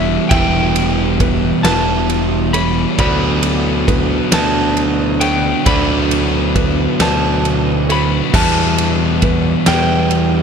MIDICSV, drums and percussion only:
0, 0, Header, 1, 2, 480
1, 0, Start_track
1, 0, Key_signature, 1, "minor"
1, 0, Tempo, 891530
1, 168, Time_signature, 6, 3, 24, 8
1, 5612, End_track
2, 0, Start_track
2, 0, Title_t, "Drums"
2, 166, Note_on_c, 9, 51, 111
2, 167, Note_on_c, 9, 36, 120
2, 220, Note_off_c, 9, 51, 0
2, 221, Note_off_c, 9, 36, 0
2, 407, Note_on_c, 9, 51, 79
2, 461, Note_off_c, 9, 51, 0
2, 647, Note_on_c, 9, 36, 94
2, 647, Note_on_c, 9, 51, 90
2, 701, Note_off_c, 9, 36, 0
2, 701, Note_off_c, 9, 51, 0
2, 886, Note_on_c, 9, 38, 120
2, 886, Note_on_c, 9, 51, 107
2, 940, Note_off_c, 9, 38, 0
2, 940, Note_off_c, 9, 51, 0
2, 1129, Note_on_c, 9, 51, 77
2, 1182, Note_off_c, 9, 51, 0
2, 1368, Note_on_c, 9, 51, 88
2, 1422, Note_off_c, 9, 51, 0
2, 1607, Note_on_c, 9, 51, 119
2, 1608, Note_on_c, 9, 36, 119
2, 1661, Note_off_c, 9, 51, 0
2, 1662, Note_off_c, 9, 36, 0
2, 1845, Note_on_c, 9, 51, 94
2, 1899, Note_off_c, 9, 51, 0
2, 2090, Note_on_c, 9, 36, 93
2, 2091, Note_on_c, 9, 51, 90
2, 2143, Note_off_c, 9, 36, 0
2, 2145, Note_off_c, 9, 51, 0
2, 2326, Note_on_c, 9, 38, 122
2, 2326, Note_on_c, 9, 51, 127
2, 2380, Note_off_c, 9, 38, 0
2, 2380, Note_off_c, 9, 51, 0
2, 2567, Note_on_c, 9, 51, 83
2, 2621, Note_off_c, 9, 51, 0
2, 2806, Note_on_c, 9, 51, 85
2, 2859, Note_off_c, 9, 51, 0
2, 3048, Note_on_c, 9, 51, 123
2, 3049, Note_on_c, 9, 36, 116
2, 3102, Note_off_c, 9, 51, 0
2, 3103, Note_off_c, 9, 36, 0
2, 3291, Note_on_c, 9, 51, 82
2, 3345, Note_off_c, 9, 51, 0
2, 3530, Note_on_c, 9, 36, 93
2, 3530, Note_on_c, 9, 51, 91
2, 3584, Note_off_c, 9, 36, 0
2, 3584, Note_off_c, 9, 51, 0
2, 3769, Note_on_c, 9, 38, 127
2, 3769, Note_on_c, 9, 51, 104
2, 3823, Note_off_c, 9, 38, 0
2, 3823, Note_off_c, 9, 51, 0
2, 4012, Note_on_c, 9, 51, 76
2, 4065, Note_off_c, 9, 51, 0
2, 4253, Note_on_c, 9, 51, 69
2, 4307, Note_off_c, 9, 51, 0
2, 4490, Note_on_c, 9, 36, 123
2, 4491, Note_on_c, 9, 49, 119
2, 4543, Note_off_c, 9, 36, 0
2, 4545, Note_off_c, 9, 49, 0
2, 4729, Note_on_c, 9, 51, 81
2, 4783, Note_off_c, 9, 51, 0
2, 4964, Note_on_c, 9, 51, 81
2, 4967, Note_on_c, 9, 36, 86
2, 5017, Note_off_c, 9, 51, 0
2, 5021, Note_off_c, 9, 36, 0
2, 5203, Note_on_c, 9, 38, 127
2, 5203, Note_on_c, 9, 51, 110
2, 5256, Note_off_c, 9, 38, 0
2, 5256, Note_off_c, 9, 51, 0
2, 5441, Note_on_c, 9, 51, 87
2, 5495, Note_off_c, 9, 51, 0
2, 5612, End_track
0, 0, End_of_file